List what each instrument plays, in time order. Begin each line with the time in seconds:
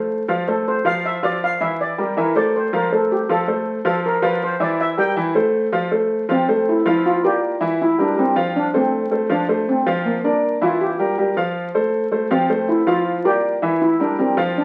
Already playing: grand piano A3 A4 C5
0.28 grand piano F3 F4 F5
0.48 grand piano A3 A4 C5, steel pan A4
0.68 steel pan C5
0.85 grand piano F3 F4 F5, steel pan F5
1.05 steel pan E5
1.23 grand piano F3 F4 F5, steel pan D5
1.44 steel pan F5
1.60 grand piano E3 E4 E5, steel pan E5
1.81 steel pan D5
1.98 grand piano G3 G4 A#4, steel pan G4
2.17 grand piano E3 E4 E5, steel pan A#4
2.35 grand piano A3 A4 C5, steel pan D5
2.56 steel pan C5
2.73 grand piano F3 F4 F5, steel pan A#4
2.92 grand piano A3 A4 C5, steel pan A4
3.12 steel pan G4
3.29 grand piano F3 F4 F5, steel pan A4
3.48 grand piano A3 A4 C5
3.85 grand piano F3 F4 F5, steel pan A4
4.06 steel pan A#4
4.22 grand piano F3 F4 F5, steel pan B4
4.43 steel pan C5
4.60 grand piano E3 E4 E5, steel pan D5
4.81 steel pan E5
4.97 grand piano G3 G4 A#4, steel pan G5
5.16 grand piano E3 E4 E5
5.35 grand piano A3 A4 C5
5.72 grand piano F3 F4 F5
5.91 grand piano A3 A4 C5
6.29 grand piano F3 F4 F5, steel pan C4
6.48 grand piano A3 A4 C5
6.69 steel pan E4
6.86 grand piano F3 F4 F5, steel pan E4
7.06 steel pan F4
7.23 grand piano A#3 A#4 D5, steel pan G4
7.61 grand piano E3 E4 E5
7.82 steel pan E4
7.98 grand piano G3 G4 A#4, steel pan D4
8.17 grand piano G3 G4 A#4, steel pan C4
8.36 grand piano F3 F4 F5
8.56 steel pan D4
8.74 grand piano A3 A4 C5, steel pan C4
9.11 grand piano A3 A4 C5
9.29 grand piano F3 F4 F5, steel pan D4
9.48 grand piano A3 A4 C5
9.69 steel pan C4
9.86 grand piano F3 F4 F5
10.05 steel pan A#3
10.24 grand piano A#3 A#4 D5, steel pan D4
10.61 grand piano E3 E4 E5, steel pan F4
10.81 steel pan G4
10.99 grand piano G3 G4 A#4
11.18 grand piano G3 G4 A#4
11.37 grand piano F3 F4 F5
11.74 grand piano A3 A4 C5
12.12 grand piano A3 A4 C5
12.31 grand piano F3 F4 F5, steel pan C4
12.49 grand piano A3 A4 C5
12.69 steel pan E4
12.87 grand piano F3 F4 F5, steel pan F4
13.24 grand piano A#3 A#4 D5, steel pan G4
13.62 grand piano E3 E4 E5
13.82 steel pan E4
14.00 grand piano G3 G4 A#4, steel pan D4
14.18 grand piano G3 G4 A#4, steel pan C4
14.37 grand piano F3 F4 F5
14.58 steel pan D4